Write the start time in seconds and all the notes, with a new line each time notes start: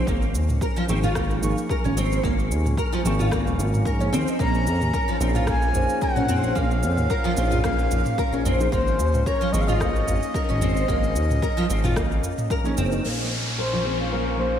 Already playing: C#4
0.07 G#1 A#3, kick, cabasa
0.22 cabasa
0.35 D#2, cabasa
0.49 C#2, mid tom, cabasa
0.61 A#4, kick, cabasa
0.76 F3, cabasa
0.87 G#1 F3 A#3 C4 D#4 G#4 C#6, cabasa
1.03 F4, mid tom, cabasa
1.15 A#3, kick, cross-stick, cabasa
1.31 cabasa
1.40 G#1 F3 A#3 D#4 G#4 C#6, cabasa
1.58 cabasa
1.69 A#4, kick, cabasa
1.84 G#1 C#4, mid tom, cabasa
1.97 C4, cabasa
2.12 cabasa
2.23 G#1 A#3, kick, cabasa
2.39 cabasa
2.51 D#2, cabasa
2.66 C#2, mid tom, cabasa
2.77 A#4, kick, cabasa
2.92 F3, cabasa
3.03 G#1 F3 A#3 C4 D#4 G#4, cabasa
3.07 C#6
3.19 F4, mid tom, cabasa
3.31 A#3, kick, cross-stick, cabasa
3.46 D#1, cabasa
3.59 G#1, cabasa
3.74 mid tom, cabasa
3.85 A#4, kick, cabasa
3.99 F3 A#3 C#4 D#4 G#4 C#5, cabasa
4.13 D#2 C4, cabasa
4.25 F3 A#3 D#4 G#4, cabasa
4.29 D#5
4.39 A#1 A#3 A#5, kick, cabasa
4.54 cabasa
4.66 F2, cabasa
4.81 D#2, mid tom, cabasa
4.94 A#4, kick, cabasa
5.08 F3, cabasa
5.20 A#1 F3 A#3 C4 D#4 G#4 C5, cabasa
5.35 F4, mid tom, cabasa
5.47 A#3 G#5, kick, cross-stick, cabasa
5.62 cabasa
5.73 A#1 F3 A#3 D#4 G#4 C5, udu, cabasa
5.89 cabasa
6.02 A#4 F#5, kick, cabasa
6.16 A#1 C#4, mid tom, cabasa
6.28 C4, udu, cabasa
6.44 cabasa
6.55 A#1 A#3 F5, kick, cabasa
6.71 cabasa
6.83 F2, cabasa
6.97 D#2, mid tom, cabasa
7.10 A#4, kick, cabasa
7.24 F3, cabasa
7.35 A#1 F3 A#3 C4 D#4 G#4, cabasa
7.39 C5
7.51 F4, mid tom, udu, cabasa
7.64 A#3 F5, kick, cross-stick, cabasa
7.79 cabasa
7.91 A#1, udu, cabasa
8.05 mid tom, cabasa
8.18 A#4, kick, cabasa
8.32 A#1 C#4, cabasa
8.45 C4, udu, cabasa
8.59 F3 A#3 D#4 G#4 C5, cabasa
8.72 G#1 A#3 C5, kick, cabasa
8.87 cabasa
8.99 D#2, cabasa
9.13 C#2, mid tom, cabasa
9.26 A#4 C#5, kick, cabasa
9.41 F3, cabasa
9.52 G#1 F3 A#3 C4 D#4 G#4 D#5 C#6, cabasa
9.61 F5
9.67 F4 D#5, mid tom, cabasa
9.80 A#3, kick, cross-stick, cabasa
9.96 cabasa
10.07 G#1, udu, cabasa
10.23 cabasa
10.34 A#4, kick, cabasa
10.49 G#1 C#4, mid tom, cabasa
10.61 C4, udu, cabasa
10.77 cabasa
10.88 G#1 A#3, kick, cabasa
11.04 cabasa
11.15 D#2, cabasa
11.30 C#2, mid tom, cabasa
11.42 A#4, kick, cabasa
11.57 F3, cabasa
11.69 G#1 C4, cabasa
11.84 F4, mid tom, udu, cabasa
11.96 A#3, kick, cross-stick, cabasa
12.12 cabasa
12.23 udu, cabasa
12.38 mid tom, cabasa
12.50 A#4, kick, cabasa
12.63 F3 A#3 C#4 D#4 G#4 C#5, cabasa
12.77 F#1 C4, udu, cabasa
12.90 F3 A#3 D#4 G#4 D#5, cabasa
13.04 A#1 A#3 C#4, downlifter
13.58 A#4 C5
13.73 F3
13.84 F3 A#3 C4 D#4 G#4 C5
14.00 F4
14.12 A#3 A#4
14.37 F3 A#3 D#4 G#4 C5
14.41 C5